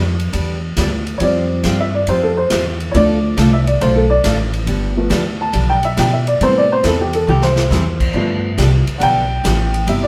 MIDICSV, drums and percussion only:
0, 0, Header, 1, 2, 480
1, 0, Start_track
1, 0, Tempo, 433526
1, 1335, Time_signature, 4, 2, 24, 8
1, 11154, End_track
2, 0, Start_track
2, 0, Title_t, "Drums"
2, 217, Note_on_c, 9, 51, 47
2, 327, Note_off_c, 9, 51, 0
2, 369, Note_on_c, 9, 51, 66
2, 480, Note_off_c, 9, 51, 0
2, 848, Note_on_c, 9, 38, 70
2, 848, Note_on_c, 9, 44, 63
2, 848, Note_on_c, 9, 51, 69
2, 959, Note_off_c, 9, 38, 0
2, 959, Note_off_c, 9, 44, 0
2, 959, Note_off_c, 9, 51, 0
2, 1181, Note_on_c, 9, 51, 43
2, 1292, Note_off_c, 9, 51, 0
2, 1329, Note_on_c, 9, 51, 64
2, 1440, Note_off_c, 9, 51, 0
2, 1811, Note_on_c, 9, 38, 68
2, 1811, Note_on_c, 9, 44, 57
2, 1811, Note_on_c, 9, 51, 59
2, 1922, Note_off_c, 9, 38, 0
2, 1922, Note_off_c, 9, 44, 0
2, 1922, Note_off_c, 9, 51, 0
2, 2290, Note_on_c, 9, 51, 65
2, 2401, Note_off_c, 9, 51, 0
2, 2770, Note_on_c, 9, 38, 81
2, 2770, Note_on_c, 9, 44, 60
2, 2770, Note_on_c, 9, 51, 78
2, 2881, Note_off_c, 9, 38, 0
2, 2881, Note_off_c, 9, 44, 0
2, 2881, Note_off_c, 9, 51, 0
2, 3103, Note_on_c, 9, 51, 45
2, 3214, Note_off_c, 9, 51, 0
2, 3262, Note_on_c, 9, 51, 59
2, 3372, Note_off_c, 9, 51, 0
2, 3737, Note_on_c, 9, 38, 72
2, 3737, Note_on_c, 9, 44, 50
2, 3737, Note_on_c, 9, 51, 65
2, 3848, Note_off_c, 9, 38, 0
2, 3848, Note_off_c, 9, 44, 0
2, 3848, Note_off_c, 9, 51, 0
2, 4066, Note_on_c, 9, 51, 49
2, 4177, Note_off_c, 9, 51, 0
2, 4222, Note_on_c, 9, 51, 63
2, 4333, Note_off_c, 9, 51, 0
2, 4694, Note_on_c, 9, 38, 75
2, 4694, Note_on_c, 9, 44, 66
2, 4694, Note_on_c, 9, 51, 74
2, 4805, Note_off_c, 9, 38, 0
2, 4805, Note_off_c, 9, 44, 0
2, 4805, Note_off_c, 9, 51, 0
2, 5021, Note_on_c, 9, 51, 47
2, 5132, Note_off_c, 9, 51, 0
2, 5172, Note_on_c, 9, 51, 59
2, 5282, Note_off_c, 9, 51, 0
2, 5653, Note_on_c, 9, 38, 62
2, 5653, Note_on_c, 9, 44, 52
2, 5653, Note_on_c, 9, 51, 70
2, 5764, Note_off_c, 9, 38, 0
2, 5764, Note_off_c, 9, 44, 0
2, 5764, Note_off_c, 9, 51, 0
2, 6127, Note_on_c, 9, 51, 67
2, 6238, Note_off_c, 9, 51, 0
2, 6454, Note_on_c, 9, 51, 49
2, 6564, Note_off_c, 9, 51, 0
2, 6614, Note_on_c, 9, 38, 69
2, 6614, Note_on_c, 9, 44, 56
2, 6614, Note_on_c, 9, 51, 72
2, 6725, Note_off_c, 9, 38, 0
2, 6725, Note_off_c, 9, 44, 0
2, 6725, Note_off_c, 9, 51, 0
2, 6942, Note_on_c, 9, 51, 44
2, 7052, Note_off_c, 9, 51, 0
2, 7095, Note_on_c, 9, 51, 62
2, 7206, Note_off_c, 9, 51, 0
2, 7570, Note_on_c, 9, 38, 65
2, 7570, Note_on_c, 9, 44, 46
2, 7570, Note_on_c, 9, 51, 65
2, 7680, Note_off_c, 9, 38, 0
2, 7680, Note_off_c, 9, 44, 0
2, 7680, Note_off_c, 9, 51, 0
2, 7897, Note_on_c, 9, 51, 52
2, 8007, Note_off_c, 9, 51, 0
2, 8052, Note_on_c, 9, 48, 50
2, 8162, Note_off_c, 9, 48, 0
2, 8213, Note_on_c, 9, 38, 68
2, 8323, Note_off_c, 9, 38, 0
2, 8372, Note_on_c, 9, 38, 83
2, 8483, Note_off_c, 9, 38, 0
2, 8541, Note_on_c, 9, 38, 63
2, 8541, Note_on_c, 9, 44, 65
2, 8652, Note_off_c, 9, 38, 0
2, 8652, Note_off_c, 9, 44, 0
2, 8861, Note_on_c, 9, 36, 76
2, 8862, Note_on_c, 9, 49, 75
2, 8972, Note_off_c, 9, 36, 0
2, 8973, Note_off_c, 9, 49, 0
2, 9502, Note_on_c, 9, 38, 71
2, 9502, Note_on_c, 9, 44, 58
2, 9502, Note_on_c, 9, 51, 65
2, 9613, Note_off_c, 9, 38, 0
2, 9613, Note_off_c, 9, 44, 0
2, 9613, Note_off_c, 9, 51, 0
2, 9824, Note_on_c, 9, 51, 50
2, 9935, Note_off_c, 9, 51, 0
2, 9979, Note_on_c, 9, 51, 69
2, 10090, Note_off_c, 9, 51, 0
2, 10461, Note_on_c, 9, 38, 72
2, 10461, Note_on_c, 9, 44, 74
2, 10461, Note_on_c, 9, 51, 79
2, 10572, Note_off_c, 9, 38, 0
2, 10572, Note_off_c, 9, 44, 0
2, 10572, Note_off_c, 9, 51, 0
2, 10785, Note_on_c, 9, 51, 50
2, 10895, Note_off_c, 9, 51, 0
2, 10934, Note_on_c, 9, 51, 66
2, 11044, Note_off_c, 9, 51, 0
2, 11154, End_track
0, 0, End_of_file